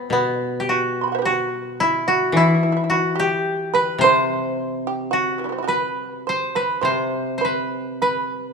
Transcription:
0.00 0.12 B3 medium
0.00 0.98 E4 medium
0.00 0.53 F#4 medium
0.10 2.33 B2 soft
0.10 2.82 B3 medium
0.10 0.64 B3 medium
0.60 0.75 G4 soft
0.69 1.25 F#4 medium
0.69 1.14 F#4 medium
1.01 1.07 B5 soft
1.01 1.12 C6 soft
1.08 1.12 G5 soft
1.12 1.21 C5 soft
1.12 1.18 E5 soft
1.12 1.22 F#5 soft
1.19 1.34 G4 soft
1.19 1.27 B4 soft
1.25 2.07 F#4 medium
1.25 1.77 F#4 medium
1.80 2.36 E4 medium
1.80 2.06 E4 medium
2.08 2.32 F#4 medium
2.08 2.89 F#4 medium
2.32 5.68 E3 soft
2.32 2.39 E4 medium
2.37 4.63 E4 medium
2.37 2.47 E4 soft
2.48 2.54 E4 soft
2.55 2.61 E4 soft
2.63 2.69 E4 soft
2.72 2.75 E4 soft
2.77 2.83 E4 soft
2.84 2.90 E4 soft
2.90 2.95 E4 soft
2.90 3.25 F#4 medium
2.96 3.03 E4 soft
3.15 3.67 G4 medium
3.19 5.19 G4 medium
3.74 3.98 B4 medium
3.74 4.07 B4 medium
3.98 6.81 C3 soft
3.98 5.74 C5 medium
4.04 4.81 C5 medium
4.87 5.10 G4 medium
5.11 5.58 F#4 medium
5.11 7.24 F#4 medium
5.38 5.44 C3 soft
5.38 5.53 E3 soft
5.44 5.58 F#3 soft
5.44 5.49 G3 soft
5.49 5.52 B3 soft
5.49 5.62 C4 soft
5.58 5.64 E4 soft
5.63 5.76 F#4 soft
5.63 5.67 G4 soft
5.67 6.21 B4 medium
5.67 6.35 B4 medium
6.27 6.53 C5 soft
6.27 6.62 C5 medium
6.55 6.81 B4 soft
6.55 6.91 B4 medium
6.81 8.53 C3 soft
6.81 7.13 C5 medium
6.81 7.37 C5 medium
7.13 7.37 B4 medium
7.38 7.78 B4 soft
7.38 7.51 C5 soft
7.45 8.02 B4 medium
7.78 7.96 G4 soft
8.02 8.53 B4 medium

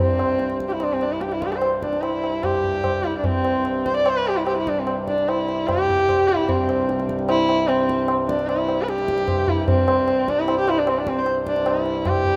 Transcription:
0.00 6.46 C2 medium
0.00 6.46 G2 medium
0.00 0.57 C4 medium
0.19 tabla na medium
0.39 tabla te medium
0.50 tabla te medium
0.60 tabla ke medium
0.68 0.74 G4 medium
0.68 tabla te medium
0.72 0.85 E4 medium
0.80 0.95 D4 medium
0.80 tabla na medium
0.93 1.04 C4 medium
1.01 1.14 D4 medium
1.01 tabla na medium
1.12 1.23 E4 medium
1.21 1.29 G4 medium
1.21 tabla te medium
1.29 1.34 G4 medium
1.29 tabla te soft
1.33 1.44 E4 medium
1.42 1.54 G4 medium
1.42 tabla ke medium
1.52 1.63 C5 medium
1.52 tabla te medium
1.62 tabla na medium
1.83 2.03 D4 medium
1.83 tabla ke medium
1.93 tabla te medium
2.02 2.45 E4 medium
2.02 tabla na medium
2.24 tabla na medium
2.43 3.06 G4 medium
2.43 tabla na medium
2.43 tabla ge medium
2.64 tabla ge medium
2.84 tabla na medium
2.84 tabla ge medium
3.04 3.18 E4 medium
3.04 tabla te medium
3.18 3.27 D4 medium
3.24 3.87 C4 medium
3.24 tabla tin loud
3.24 tabla ge medium
3.45 tabla na medium
3.65 tabla na medium
3.85 3.95 C5 loud
3.85 tabla ke medium
3.96 4.07 D5 medium
4.06 4.18 C5 medium
4.06 tabla na medium
4.16 4.29 B4 medium
4.26 4.38 G4 loud
4.26 tabla na medium
4.37 4.46 E4 medium
4.47 4.57 G4 medium
4.47 tabla na medium
4.57 4.70 E4 medium
4.67 4.81 D4 medium
4.67 tabla ke medium
4.79 4.89 C4 medium
4.87 tabla na medium
5.08 5.30 D4 medium
5.08 tabla ke medium
5.18 tabla te medium
5.28 5.69 E4 medium
5.28 tabla na medium
5.48 tabla na medium
5.67 6.29 G4 loud
5.67 tabla na medium
5.67 tabla ge medium
5.89 tabla ge medium
6.09 tabla na medium
6.09 tabla ge medium
6.28 6.51 E4 medium
6.28 tabla te medium
6.48 12.36 C2 medium
6.48 12.36 G2 medium
6.48 7.09 C4 medium
6.48 tabla tin medium
6.48 tabla ge medium
6.69 tabla na medium
6.89 tabla te medium
7.00 tabla te medium
7.09 tabla ke medium
7.19 tabla te medium
7.29 7.69 E4 loud
7.29 tabla na medium
7.49 tabla na medium
7.68 8.09 C4 medium
7.68 tabla na medium
7.89 tabla ke medium
8.08 tabla na medium
8.28 8.49 D4 medium
8.28 tabla ke medium
8.39 tabla te medium
8.48 8.84 E4 medium
8.48 tabla na medium
8.68 tabla na medium
8.82 8.90 B4 medium
8.88 9.50 G4 loud
8.88 tabla te medium
8.98 tabla te medium
9.08 tabla ke medium
9.18 tabla te medium
9.28 tabla na medium
9.28 tabla ge medium
9.48 9.69 E4 medium
9.48 tabla ge medium
9.68 10.31 C4 medium
9.68 tabla tin loud
9.68 tabla ge medium
9.88 tabla na medium
10.08 tabla na medium
10.28 10.41 D4 loud
10.28 tabla ke medium
10.40 10.59 E4 medium
10.48 tabla na medium
10.59 10.71 G4 loud
10.68 10.80 E4 loud
10.68 tabla na medium
10.79 10.90 D4 medium
10.87 11.00 C4 medium
10.87 tabla na medium
10.98 11.10 D4 medium
11.07 11.20 C4 medium
11.07 tabla ke medium
11.19 11.28 C5 medium
11.26 tabla na medium
11.47 11.70 D4 medium
11.47 tabla ke medium
11.56 tabla te medium
11.66 12.09 E4 medium
11.66 tabla na medium
11.86 tabla na medium
12.05 12.36 G4 loud
12.05 tabla na medium
12.05 tabla ge medium
12.25 tabla ge medium

